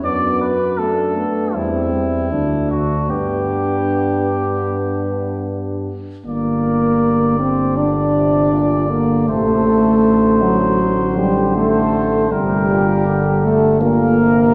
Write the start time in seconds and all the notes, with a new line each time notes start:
0.04 F#2 B3 D4 D5
0.41 B4
0.78 A3 D4 A4
1.16 B3
1.54 E2 G3 C4 E4
1.93 G3
2.31 D2 A3 D4
2.71 F#4
3.10 G2 B3 D4 G4
6.25 G1 A#3 A#4 D5
7.39 C4 C5
7.76 D3 D4 D5
8.15 C3
8.52 A#2
8.89 D3 A#3 A#4
9.27 A1 C3 A3 A4 C5
9.66 D3
10.42 F#3 F#4
10.80 D3
11.18 G3 G4
11.56 A3 A4 C5
12.31 G1 C3 G3 G4 A#4
12.69 A#2
13.06 D3
13.44 A3 A4
13.81 A#2 A#3 A#4
14.19 C3